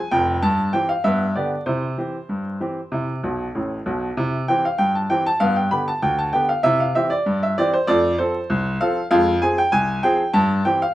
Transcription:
0.11 F1 F2 G5
0.42 G2 A5
0.73 E3 C4 G4 G5
0.89 F5
1.04 G2 B3 E5
1.35 D3 B3 G4 D5
1.66 C3 E4 C5
1.98 E3 C4 G4
2.29 G2
2.60 E3 C4 G4
2.92 C3 E4
3.23 B1 B2
3.55 A1 A2
3.86 B1 B2
4.17 C3 E4
4.48 E3 C4 G4 G5
4.65 F5
4.78 G2 G5
4.95 A5
5.10 E3 C4 G4 G5
5.26 A5
5.40 G2 B3 F5
5.56 G5
5.71 D3 B3 G4 B5
5.88 A5
6.02 D2 G5
6.19 A5
6.33 D3 B3 G4 G5
6.49 F5
6.63 C3 E4 E5
6.80 F5
6.95 E3 C4 G4 E5
7.10 D5
7.26 G2
7.43 E5
7.58 E3 C4 G4 D5
7.74 C5
7.87 F2 A3 D5
8.18 F3 C4 A4 C5
8.50 C2
8.81 F3 C4 A4 F5
9.11 F2 G#3 F5
9.42 F3 C4 G#4 G#5
9.58 G5
9.72 C2 G#5
10.03 F3 C4 G#4 G5
10.34 G2 A5
10.65 E3 C4 G4 G5
10.82 F5

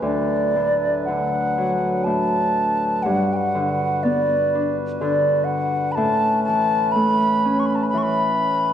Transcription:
Already playing: E4
0.02 D2 F#3 D4 B4 D5
0.56 A2
1.05 D3 F#5
1.58 F#3
2.04 A2 A5
3.03 G2 F#5
3.09 G3 F#4
3.33 F#5 G5
3.55 D3
3.69 F#5
4.03 B3 D5
4.55 D4
4.98 D3 D5
5.44 F#5
5.92 A5 B5
5.97 A2 A3 C#4
6.44 A5
6.48 E3
6.92 A3 B5
7.45 C#4
7.60 C#6
7.66 B5
7.75 A5
7.83 B5
7.89 B5
7.94 E3
7.98 C#6
8.03 B5

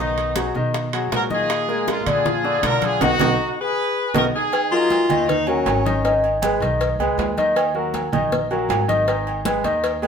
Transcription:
Already playing: B1 B3 D#4
0.00 D#3 D#4 D#5
0.18 high bongo, high conga, high timbale
0.36 F#3 F#4 G#4, high bongo, high conga, high timbale, low timbale
0.55 B2 D#3 D#4 D#5, high bongo, high conga
0.74 high bongo, high conga, high timbale
0.93 F#3 F#4 G#4, high conga, high timbale
1.12 A#2 F#3 F#4 G#4 A#4, high bongo, low bongo, high conga, high timbale, low timbale
1.30 D#3 D#4 F4 G#4 D#5, high bongo, high conga
1.49 high bongo, high conga, high timbale
1.68 G#3 G#4 A#4, high bongo, high conga
1.88 A#3 F4, high bongo, high conga, high timbale, low timbale
2.06 A#2 D3 D4 F4 G#4 D5, high conga, low conga, high timbale
2.25 F3 F4 G#4, high bongo, high conga, low conga
2.44 D3 D4 D5, high bongo, high conga
2.63 B2 D3 D4 F4 A#4 D5, high bongo, low bongo, high timbale, low timbale
2.82 F4 G#4, high bongo, high conga, high timbale
3.01 B1 B3 D#4 F#4, high bongo, low conga, high timbale
3.19 B1 B3 D#4 F#4, high bongo, low conga, high timbale
3.60 G#4 B4
4.14 B1 B3 D#4 F#4 A#4, high bongo, low conga, high timbale
4.36 D#4 G#4
4.52 cowbell, high conga, low agogo
4.71 F#3 D#4 F4 A#4, high conga
4.90 cowbell, high conga, low timbale, low agogo
5.09 D#2 D#3 D#4 D#5, high conga, low conga, low agogo
5.29 D#4, cowbell, high conga, low conga
5.47 F#3 C#4 F#4 A#4, high conga, low agogo
5.66 G#1, cowbell, high conga, low timbale, low agogo
5.85 D#3 D#4 D#5, cowbell, high conga
6.04 D#3 D#4 D#5, cowbell, high conga, low agogo
6.24 high conga, low agogo
6.42 G#3 G#4 B4, cowbell, high conga, low timbale, low agogo
6.60 B1 D#3 D#4 D#5, cowbell, high conga
6.81 cowbell, high conga, low agogo
6.99 C#2 G#3 G#4 B4, high conga, low agogo
7.18 D#2, cowbell, high conga, low timbale, low agogo
7.38 D#3 D#4 D#5, cowbell, high conga
7.56 cowbell, high conga, low agogo
7.75 F#3 F#4 A#4, high conga
7.94 cowbell, high conga, low timbale, low agogo
8.12 A#1 D#3 D#4 D#5, high conga, low conga, low agogo
8.32 cowbell, high conga, low conga
8.51 F#3 F#4 A#4, high conga, low agogo
8.69 G#1, cowbell, high conga, low timbale, low agogo
8.88 D#3 D#4 D#5, cowbell, high conga
9.08 D#3 D#4 D#5, cowbell, high conga, low agogo
9.27 high conga, low agogo
9.45 G#3 G#4 B4, cowbell, high conga, low timbale, low agogo
9.64 D#2 D#3 D#4 D#5, cowbell, high conga
9.84 cowbell, high conga, low agogo
10.02 G#3 G#4 B4, high conga, low agogo

